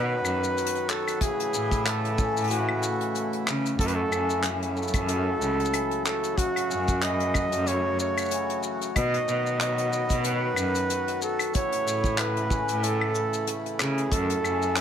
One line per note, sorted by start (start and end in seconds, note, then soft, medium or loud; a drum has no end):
0.00 0.21 B2 loud
0.00 1.26 B2 medium
0.00 1.19 D#3 medium
0.00 0.55 F#3 medium
0.00 1.19 F#3 medium
0.00 1.46 A3 medium
0.00 1.19 B3 medium
0.00 3.73 B3 medium
0.00 0.23 C#4 medium
0.00 1.59 D#4 medium
0.00 0.88 F#4 medium
0.00 1.19 F#4 medium
0.00 0.90 B4 loud
0.25 0.40 F#2 medium
0.25 claves medium
0.25 shaker medium
0.44 shaker medium
0.56 1.26 F#3 medium
0.56 closed hi-hat soft
0.56 shaker medium
0.66 closed hi-hat medium
0.75 closed hi-hat medium
0.89 3.79 F#4 medium
0.89 1.24 A4 medium
0.89 clap medium
0.89 shaker medium
1.08 closed hi-hat soft
1.08 claves medium
1.08 shaker medium
1.21 2.48 A2 medium
1.21 8.92 C#3 medium
1.21 3.77 E3 medium
1.21 8.92 A3 medium
1.21 6.34 E4 loud
1.21 1.85 G#4 loud
1.21 kick loud
1.21 closed hi-hat medium
1.21 shaker medium
1.40 closed hi-hat medium
1.53 2.31 A2 medium
1.53 7.45 E4 medium
1.53 shaker medium
1.71 kick medium
1.71 closed hi-hat soft
1.71 shaker medium
1.85 3.14 A3 medium
1.85 2.52 A4 loud
1.85 clap medium
1.85 closed hi-hat medium
1.85 claves medium
1.85 shaker soft
2.05 closed hi-hat soft
2.18 4.10 C#4 medium
2.18 kick loud
2.18 shaker medium
2.36 2.79 A2 medium
2.36 closed hi-hat soft
2.36 shaker medium
2.40 closed hi-hat soft
2.44 closed hi-hat soft
2.47 3.84 A2 medium
2.47 3.47 F#4 medium
2.47 closed hi-hat soft
2.47 shaker soft
2.51 closed hi-hat medium
2.69 claves medium
2.83 shaker loud
3.01 closed hi-hat soft
3.14 4.75 A3 medium
3.14 closed hi-hat medium
3.14 shaker medium
3.33 closed hi-hat soft
3.46 3.74 C#3 medium
3.46 8.44 A4 medium
3.46 clap medium
3.46 claves medium
3.46 shaker medium
3.65 closed hi-hat soft
3.65 shaker medium
3.78 5.06 F#2 medium
3.78 4.07 F#2 loud
3.78 8.92 F#3 medium
3.78 6.05 F#4 medium
3.78 3.88 A4 loud
3.78 kick loud
3.78 closed hi-hat medium
3.78 shaker soft
3.87 3.96 B4 medium
3.87 closed hi-hat medium
3.95 4.44 A4 loud
4.11 4.90 F#2 medium
4.11 6.70 C#4 medium
4.11 claves medium
4.11 shaker medium
4.30 shaker medium
4.43 5.71 E3 medium
4.43 clap medium
4.43 closed hi-hat medium
4.43 shaker medium
4.62 closed hi-hat soft
4.75 7.34 A3 medium
4.75 6.01 A4 loud
4.75 shaker soft
4.83 shaker soft
4.88 shaker medium
4.94 5.37 F#2 medium
4.94 kick loud
4.94 closed hi-hat medium
4.94 claves medium
4.94 shaker soft
5.07 6.36 F#2 medium
5.07 closed hi-hat medium
5.07 shaker medium
5.41 5.56 C#2 medium
5.41 shaker medium
5.60 closed hi-hat soft
5.65 shaker medium
5.72 7.01 E3 medium
5.72 closed hi-hat medium
5.72 claves medium
5.72 shaker soft
5.91 closed hi-hat soft
6.05 6.37 F#4 medium
6.05 6.39 A4 loud
6.05 clap medium
6.05 shaker medium
6.23 closed hi-hat soft
6.23 shaker medium
6.37 7.65 F#2 medium
6.37 8.63 F#4 medium
6.37 11.50 F#4 medium
6.37 7.04 F#4 loud
6.37 kick medium
6.37 closed hi-hat medium
6.37 shaker soft
6.56 closed hi-hat medium
6.56 claves medium
6.70 7.48 F#2 medium
6.70 10.56 C#4 medium
6.70 shaker medium
6.88 kick medium
6.88 shaker medium
7.02 8.29 E3 medium
7.02 7.69 D#5 loud
7.02 clap medium
7.02 closed hi-hat medium
7.02 shaker soft
7.20 closed hi-hat soft
7.34 11.78 A3 medium
7.34 kick medium
7.34 claves medium
7.34 shaker medium
7.52 7.95 F#2 medium
7.52 closed hi-hat medium
7.52 shaker medium
7.66 9.01 F#2 medium
7.66 7.99 C#5 loud
7.66 closed hi-hat medium
7.66 shaker medium
7.99 8.60 C#5 loud
7.99 shaker medium
8.17 closed hi-hat medium
8.17 claves medium
8.17 shaker medium
8.21 shaker soft
8.25 shaker soft
8.28 9.01 E3 medium
8.28 closed hi-hat medium
8.28 shaker soft
8.31 shaker medium
8.50 closed hi-hat soft
8.63 8.96 F#4 medium
8.63 shaker medium
8.81 closed hi-hat soft
8.81 shaker medium
8.96 10.24 B2 medium
8.96 9.23 B2 loud
8.96 11.52 D#3 medium
8.96 11.52 F#3 medium
8.96 11.52 B3 medium
8.96 11.21 F#4 medium
8.96 9.56 D#5 loud
8.96 kick loud
8.96 closed hi-hat medium
8.96 claves medium
8.96 shaker soft
9.14 closed hi-hat medium
9.28 10.06 B2 medium
9.28 11.92 D#4 medium
9.28 shaker medium
9.46 shaker soft
9.60 10.88 F#3 medium
9.60 10.21 D#5 medium
9.60 clap medium
9.60 closed hi-hat medium
9.60 shaker soft
9.78 closed hi-hat medium
9.93 14.07 B3 medium
9.93 shaker medium
10.10 10.53 B2 medium
10.10 kick medium
10.10 closed hi-hat medium
10.10 shaker medium
10.24 11.59 B2 medium
10.24 11.18 B4 loud
10.24 closed hi-hat medium
10.24 shaker medium
10.56 10.72 F#2 medium
10.56 claves medium
10.56 shaker medium
10.75 closed hi-hat medium
10.75 shaker medium
10.89 11.59 F#3 medium
10.89 closed hi-hat medium
10.89 shaker soft
11.08 closed hi-hat soft
11.21 14.46 F#4 medium
11.21 11.52 A4 medium
11.21 shaker medium
11.39 closed hi-hat medium
11.39 claves medium
11.39 shaker medium
11.54 12.81 A2 medium
11.54 14.81 C#3 medium
11.54 14.09 E3 medium
11.54 14.09 A3 medium
11.54 14.81 E4 medium
11.54 14.12 A4 medium
11.54 12.21 C#5 loud
11.54 kick loud
11.54 closed hi-hat medium
11.54 shaker soft
11.72 closed hi-hat medium
11.86 12.64 A2 medium
11.86 14.81 E4 medium
11.86 shaker loud
12.04 kick medium
12.04 shaker medium
12.18 13.47 A3 medium
12.18 12.85 B4 medium
12.18 clap medium
12.18 closed hi-hat medium
12.18 claves medium
12.18 shaker soft
12.36 closed hi-hat soft
12.50 14.43 C#4 medium
12.50 kick loud
12.50 shaker medium
12.68 13.11 A2 medium
12.68 closed hi-hat medium
12.68 shaker medium
12.83 14.17 A2 medium
12.83 13.53 A4 medium
12.83 closed hi-hat medium
12.83 shaker medium
13.01 claves medium
13.15 shaker medium
13.33 closed hi-hat soft
13.33 shaker medium
13.47 14.81 A3 medium
13.47 closed hi-hat medium
13.47 shaker medium
13.66 closed hi-hat soft
13.79 14.07 C#3 medium
13.79 14.14 G#4 medium
13.79 clap medium
13.79 claves medium
13.79 shaker medium
13.98 closed hi-hat soft
14.12 14.81 F#2 medium
14.12 14.39 F#2 loud
14.12 14.81 F#3 medium
14.12 14.81 A3 medium
14.12 14.81 A4 medium
14.12 14.79 A4 loud
14.12 kick loud
14.12 closed hi-hat medium
14.12 shaker soft
14.30 closed hi-hat medium
14.44 14.81 F#2 medium
14.44 14.81 C#4 medium
14.44 claves medium
14.44 shaker medium
14.62 shaker medium
14.76 14.81 E3 medium
14.76 14.81 E5 loud
14.76 clap medium
14.76 closed hi-hat medium
14.76 shaker soft